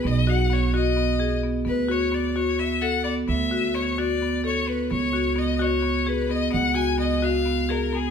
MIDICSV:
0, 0, Header, 1, 4, 480
1, 0, Start_track
1, 0, Tempo, 463679
1, 46, Time_signature, 7, 3, 24, 8
1, 8390, End_track
2, 0, Start_track
2, 0, Title_t, "Violin"
2, 0, Program_c, 0, 40
2, 69, Note_on_c, 0, 75, 79
2, 303, Note_on_c, 0, 78, 79
2, 318, Note_off_c, 0, 75, 0
2, 545, Note_on_c, 0, 73, 74
2, 561, Note_off_c, 0, 78, 0
2, 766, Note_off_c, 0, 73, 0
2, 772, Note_on_c, 0, 75, 79
2, 1446, Note_off_c, 0, 75, 0
2, 1731, Note_on_c, 0, 71, 76
2, 1975, Note_on_c, 0, 73, 72
2, 1991, Note_off_c, 0, 71, 0
2, 2215, Note_on_c, 0, 74, 65
2, 2231, Note_off_c, 0, 73, 0
2, 2443, Note_on_c, 0, 73, 75
2, 2458, Note_off_c, 0, 74, 0
2, 2679, Note_on_c, 0, 76, 73
2, 2695, Note_off_c, 0, 73, 0
2, 2916, Note_on_c, 0, 78, 82
2, 2931, Note_off_c, 0, 76, 0
2, 3138, Note_off_c, 0, 78, 0
2, 3144, Note_on_c, 0, 74, 72
2, 3257, Note_off_c, 0, 74, 0
2, 3399, Note_on_c, 0, 76, 80
2, 3877, Note_on_c, 0, 73, 68
2, 3893, Note_off_c, 0, 76, 0
2, 4122, Note_on_c, 0, 74, 80
2, 4138, Note_off_c, 0, 73, 0
2, 4603, Note_off_c, 0, 74, 0
2, 4614, Note_on_c, 0, 73, 74
2, 4843, Note_on_c, 0, 71, 67
2, 4858, Note_off_c, 0, 73, 0
2, 5079, Note_off_c, 0, 71, 0
2, 5086, Note_on_c, 0, 73, 76
2, 5568, Note_on_c, 0, 75, 71
2, 5584, Note_off_c, 0, 73, 0
2, 5810, Note_on_c, 0, 73, 76
2, 5826, Note_off_c, 0, 75, 0
2, 6294, Note_on_c, 0, 71, 77
2, 6310, Note_off_c, 0, 73, 0
2, 6525, Note_on_c, 0, 75, 86
2, 6541, Note_off_c, 0, 71, 0
2, 6746, Note_off_c, 0, 75, 0
2, 6753, Note_on_c, 0, 78, 82
2, 6989, Note_on_c, 0, 80, 85
2, 7005, Note_off_c, 0, 78, 0
2, 7228, Note_off_c, 0, 80, 0
2, 7234, Note_on_c, 0, 75, 74
2, 7491, Note_on_c, 0, 77, 82
2, 7507, Note_off_c, 0, 75, 0
2, 7971, Note_on_c, 0, 70, 81
2, 7987, Note_off_c, 0, 77, 0
2, 8223, Note_on_c, 0, 68, 84
2, 8238, Note_off_c, 0, 70, 0
2, 8390, Note_off_c, 0, 68, 0
2, 8390, End_track
3, 0, Start_track
3, 0, Title_t, "Marimba"
3, 0, Program_c, 1, 12
3, 43, Note_on_c, 1, 59, 62
3, 221, Note_off_c, 1, 59, 0
3, 281, Note_on_c, 1, 66, 65
3, 460, Note_off_c, 1, 66, 0
3, 516, Note_on_c, 1, 59, 66
3, 697, Note_off_c, 1, 59, 0
3, 766, Note_on_c, 1, 66, 70
3, 943, Note_off_c, 1, 66, 0
3, 998, Note_on_c, 1, 59, 61
3, 1178, Note_off_c, 1, 59, 0
3, 1237, Note_on_c, 1, 68, 64
3, 1417, Note_off_c, 1, 68, 0
3, 1484, Note_on_c, 1, 59, 57
3, 1661, Note_off_c, 1, 59, 0
3, 1707, Note_on_c, 1, 59, 65
3, 1891, Note_off_c, 1, 59, 0
3, 1951, Note_on_c, 1, 66, 74
3, 2133, Note_off_c, 1, 66, 0
3, 2195, Note_on_c, 1, 59, 62
3, 2376, Note_off_c, 1, 59, 0
3, 2439, Note_on_c, 1, 66, 67
3, 2619, Note_off_c, 1, 66, 0
3, 2686, Note_on_c, 1, 59, 58
3, 2863, Note_off_c, 1, 59, 0
3, 2919, Note_on_c, 1, 69, 68
3, 3099, Note_off_c, 1, 69, 0
3, 3159, Note_on_c, 1, 59, 61
3, 3338, Note_off_c, 1, 59, 0
3, 3390, Note_on_c, 1, 59, 66
3, 3573, Note_off_c, 1, 59, 0
3, 3636, Note_on_c, 1, 66, 65
3, 3817, Note_off_c, 1, 66, 0
3, 3877, Note_on_c, 1, 59, 62
3, 4057, Note_off_c, 1, 59, 0
3, 4123, Note_on_c, 1, 66, 67
3, 4301, Note_off_c, 1, 66, 0
3, 4371, Note_on_c, 1, 59, 58
3, 4546, Note_off_c, 1, 59, 0
3, 4596, Note_on_c, 1, 69, 66
3, 4776, Note_off_c, 1, 69, 0
3, 4841, Note_on_c, 1, 59, 57
3, 5019, Note_off_c, 1, 59, 0
3, 5078, Note_on_c, 1, 59, 64
3, 5258, Note_off_c, 1, 59, 0
3, 5312, Note_on_c, 1, 66, 64
3, 5494, Note_off_c, 1, 66, 0
3, 5546, Note_on_c, 1, 59, 69
3, 5730, Note_off_c, 1, 59, 0
3, 5790, Note_on_c, 1, 66, 72
3, 5973, Note_off_c, 1, 66, 0
3, 6029, Note_on_c, 1, 59, 62
3, 6212, Note_off_c, 1, 59, 0
3, 6279, Note_on_c, 1, 68, 60
3, 6459, Note_off_c, 1, 68, 0
3, 6518, Note_on_c, 1, 59, 61
3, 6698, Note_off_c, 1, 59, 0
3, 6737, Note_on_c, 1, 59, 68
3, 6925, Note_off_c, 1, 59, 0
3, 6981, Note_on_c, 1, 66, 69
3, 7168, Note_off_c, 1, 66, 0
3, 7226, Note_on_c, 1, 59, 62
3, 7410, Note_off_c, 1, 59, 0
3, 7478, Note_on_c, 1, 66, 74
3, 7658, Note_off_c, 1, 66, 0
3, 7719, Note_on_c, 1, 59, 61
3, 7899, Note_off_c, 1, 59, 0
3, 7960, Note_on_c, 1, 68, 62
3, 8139, Note_off_c, 1, 68, 0
3, 8205, Note_on_c, 1, 59, 66
3, 8382, Note_off_c, 1, 59, 0
3, 8390, End_track
4, 0, Start_track
4, 0, Title_t, "Upright bass"
4, 0, Program_c, 2, 32
4, 51, Note_on_c, 2, 35, 70
4, 1693, Note_off_c, 2, 35, 0
4, 1720, Note_on_c, 2, 38, 66
4, 3368, Note_off_c, 2, 38, 0
4, 3402, Note_on_c, 2, 38, 74
4, 5049, Note_off_c, 2, 38, 0
4, 5088, Note_on_c, 2, 37, 70
4, 6733, Note_off_c, 2, 37, 0
4, 6773, Note_on_c, 2, 37, 70
4, 8390, Note_off_c, 2, 37, 0
4, 8390, End_track
0, 0, End_of_file